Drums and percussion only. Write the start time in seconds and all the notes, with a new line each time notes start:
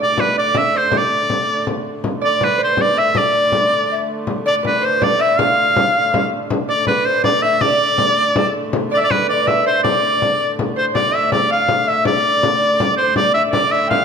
0.17 frame drum
0.54 frame drum
0.92 frame drum
1.30 frame drum
1.67 frame drum
2.04 frame drum
2.23 frame drum
2.41 frame drum
2.77 frame drum
3.15 frame drum
3.33 frame drum
3.52 frame drum
4.27 frame drum
4.46 frame drum
4.65 frame drum
5.02 frame drum
5.39 frame drum
5.57 frame drum
5.76 frame drum
6.14 frame drum
6.33 frame drum
6.50 frame drum
6.69 frame drum
6.87 frame drum
7.24 frame drum
7.61 frame drum
7.98 frame drum
8.36 frame drum
8.73 frame drum
8.92 frame drum
9.11 frame drum
9.48 frame drum
9.85 frame drum
10.22 frame drum
10.59 frame drum
10.95 frame drum
11.15 frame drum
11.32 frame drum
11.68 frame drum
12.05 frame drum
12.25 frame drum
12.43 frame drum
12.80 frame drum
13.16 frame drum
13.35 frame drum
13.53 frame drum
13.91 frame drum